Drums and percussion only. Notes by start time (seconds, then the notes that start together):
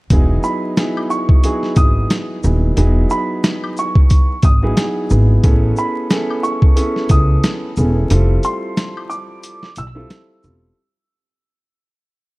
0.10 kick, closed hi-hat, maracas
0.43 shaker, maracas
0.77 snare, closed hi-hat, maracas
0.97 high woodblock
1.10 maracas, shaker
1.29 kick
1.43 closed hi-hat, maracas
1.63 snare
1.76 kick, closed hi-hat, shaker, maracas
2.10 snare, closed hi-hat, maracas
2.43 maracas, shaker
2.77 closed hi-hat, maracas
3.10 shaker, maracas
3.44 snare, closed hi-hat, maracas
3.64 high woodblock
3.77 maracas, shaker
3.95 kick
4.10 kick, closed hi-hat, maracas
4.42 kick, closed hi-hat, shaker, maracas
4.77 snare, closed hi-hat, maracas
5.10 maracas, shaker
5.44 kick, closed hi-hat, maracas
5.76 shaker, maracas
6.10 snare, closed hi-hat, maracas
6.30 high woodblock
6.44 maracas, shaker
6.62 kick
6.77 closed hi-hat, maracas
6.96 snare
7.09 kick, closed hi-hat, shaker, maracas
7.44 snare, closed hi-hat, maracas
7.76 shaker, maracas
8.10 closed hi-hat, maracas
8.43 closed hi-hat, shaker, maracas
8.77 snare, closed hi-hat, maracas
8.97 high woodblock
9.10 maracas, shaker
9.43 closed hi-hat, maracas
9.63 snare
9.76 closed hi-hat, shaker, maracas
10.10 snare, closed hi-hat, maracas
10.43 shaker, maracas